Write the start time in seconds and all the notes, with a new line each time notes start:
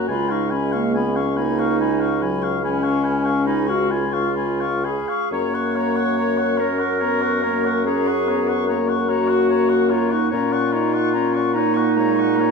Already playing: A#3
0.08 C#2 G#3 F4 G#5 B5
0.29 D#4 F5 C#6
0.50 C#4 G#5 B5
0.72 A#3 F5 C#6
0.94 B3 G#5 B5
1.16 C#4 F5 C#6
1.36 A#3 D#4 G#5 B5
1.59 F5 C#6
1.80 G#3 G#5 B5
2.00 F5 C#6
2.22 F#3 G#5 B5
2.42 F5 C#6
2.63 G#3 C#4 G#5 B5
2.83 F5 C#6
3.03 G#5 B5
3.24 F5 C#6
3.46 D#4 G#5 B5
3.67 F#4 F5 C#6
3.89 F4 G#5 B5
4.12 F5 C#6
4.35 G#5 B5
4.61 F5 C#6
4.84 G#4 G#5 B5
5.08 F5 C#6
5.32 F#2 A#3 C#5 A#5
5.54 F#5 C#6
5.76 C#5 A#5
5.96 F#5 C#6
6.17 C#5 A#5
6.37 F#5 C#6
6.57 C#4 A#4 C#5 A#5
6.79 F#5 C#6
7.00 B3 C#5 A#5
7.22 F#5 C#6
7.43 A#3 C#5 A#5
7.65 F#5 C#6
7.85 C#4 G#4 C#5 A#5
8.07 F#5 C#6
8.27 B3 C#5 A#5
8.48 F#5 C#6
8.68 A#3 C#5 A#5
8.88 F#5 C#6
9.09 A#3 F#4 C#5 A#5
9.28 F#5 C#6
9.49 C#5 A#5
9.69 F#5 C#6
9.90 F4 C#5 A#5
10.11 D#4 F#5 C#6
10.31 A#2 C#4 F4 C#5 A#5
10.52 F#5 C#6
10.72 D#4 C#5 A#5
10.93 F#5 C#6
11.13 C#4 C#5 A#5
11.34 F#5 C#6
11.53 A#3 D#4 C#5 A#5
11.74 F#5 C#6
11.95 G#3 C#5 A#5
12.16 F#5 C#6
12.36 A#3 A#5
12.40 C#5